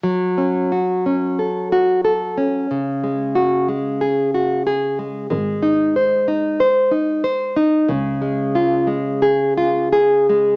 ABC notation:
X:1
M:4/4
L:1/8
Q:1/4=92
K:F#m
V:1 name="Nylon-string guitar"
F, C F C A F A C | C, G, F G, G F G G, | G, ^D ^B D B D B D | C, G, ^E G, G E G G, |]
V:2 name="Double bass" clef=bass
z8 | z8 | G,,,8 | C,,8 |]